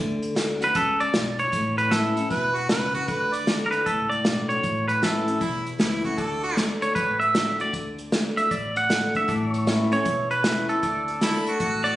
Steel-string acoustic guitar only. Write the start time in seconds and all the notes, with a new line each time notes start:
Already playing: D3
0.35 D3 A3 D4 F#4
0.61 D4 F#4
0.75 C#3
1.14 G2
1.52 A2
1.91 E3 A3 C#4 E4
2.17 C#4 E4
2.31 B2
2.69 C#3
3.08 D3
3.47 D3 A3 D4 F#4
3.86 A2
4.24 D3 A3 D4 F#4
4.50 D4 F#4
4.63 A2
5.02 E3 A3 C#4 E4
5.27 C#4 E4
5.41 E2
5.78 E3 A3 C#4 E4
6.04 C#4 E4
6.18 D3
6.57 D3 A3 D4 F#4
6.95 A2
7.35 D3 A3 D4 F#4
7.60 D4 F#4
7.74 D3
8.12 D3 A3 D4 F#4
8.51 A2
8.89 D3 A3 D4 F#4
9.14 D4 F#4
9.28 A2
9.67 E3 A3 C#4 E4
9.92 C#4 E4
10.06 E2
10.45 E3 A3 C#4 E4
10.84 D3
11.22 D3 A3 D4 F#4
11.61 A2